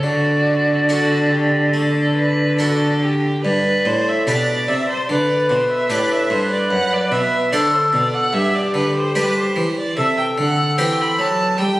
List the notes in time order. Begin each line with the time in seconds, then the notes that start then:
0.03 D3 F#4 D5
0.89 D4 F#4 A4
1.32 G4
1.74 A3 A4
2.16 B4
2.59 D4 F#4 A4
3.03 G4
3.43 G2 B4 D5
3.85 A2 C5
4.08 E5
4.27 B2 D4 G4 B4 D5
4.68 C3 E5
4.89 C5
5.09 D3 B4 D5
5.50 B2 C5
5.70 E5
5.89 A2 D4 G4 B4 D5
6.12 E5
6.30 G2 C5
6.52 D5
6.71 F#2 F#5
6.92 D5
7.11 B2 E5
7.52 D3 D4 A4 C5 D5
7.74 C5
7.93 B2 D5
8.14 F#5
8.33 G2 G4 E5
8.55 D5
8.74 D3 B4
8.96 C5
9.15 G3 D4 G4 B4
9.36 C5
9.56 E3
9.80 D5
9.97 C3 A4 E5
10.18 G5
10.38 D3 F#5
10.78 E3 C4 G4 C5 G5
11.01 B5
11.19 F#3 A5
11.58 G3 G#4 G5
11.63 G4